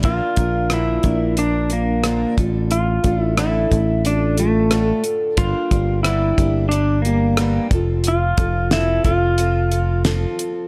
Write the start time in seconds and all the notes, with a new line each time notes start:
0.03 A#1 A#2 D3 F3 A#3 D4 F4 A#4, kick, closed hi-hat
0.36 A#1 F3 A#3 D4 A#4, kick, closed hi-hat
0.70 A#2 D3 F3 A#3 D4 E4 A#4, cross-stick, closed hi-hat
1.03 A#1 F3 A#3 D4 A#4, kick, closed hi-hat
1.37 F3 A#3 D4 A#4, closed hi-hat
1.69 F3 A#3 D4 A#4, closed hi-hat
2.04 A#2 D3 F3 A#3 D4 A#4, cross-stick, closed hi-hat
2.37 A1 A2 D3 A3 D4 F4 A4, kick, closed hi-hat
2.71 F4, closed hi-hat
3.03 A1 A3 D4 F4 A4, kick, closed hi-hat
3.21 E4
3.37 A2 D3 A3 D4 E4 A4, cross-stick, closed hi-hat
3.71 A1 A3 D4 A4, kick, closed hi-hat
4.05 A3 D4 F4 A4, closed hi-hat
4.37 A3 D4 F4 A4, closed hi-hat
4.71 A2 D3 A3 D4 F4 A4, cross-stick, closed hi-hat
5.04 closed hi-hat
5.37 G1 G2 D3 G3 A#3 D4 F4 G4, kick, closed hi-hat
5.71 G1 G3 A#3 D4 G4, kick, closed hi-hat
6.03 G2 D3 G3 A#3 D4 E4 G4, cross-stick, closed hi-hat
6.38 G1 G3 A#3 D4 G4, kick, closed hi-hat
6.69 G3 A#3 D4, closed hi-hat
6.73 D4 G4
7.02 A#3 G4, closed hi-hat
7.06 G3 A#3 D4
7.37 G2 D3 G3 A#3 G4, cross-stick, closed hi-hat
7.41 D4
7.71 F1 C4 F4 A4, kick, closed hi-hat
7.75 F3
8.04 closed hi-hat
8.08 F4
8.37 F1 C4 F4 A4, kick, closed hi-hat
8.71 F3 C4 E4 A4, snare, closed hi-hat
9.04 F1 C4 F4 A4, kick, closed hi-hat
9.38 F3 C4 F4 A4, closed hi-hat
9.71 C4 F4 A4, closed hi-hat
10.04 F3 C4 F4 A4, snare, closed hi-hat
10.39 closed hi-hat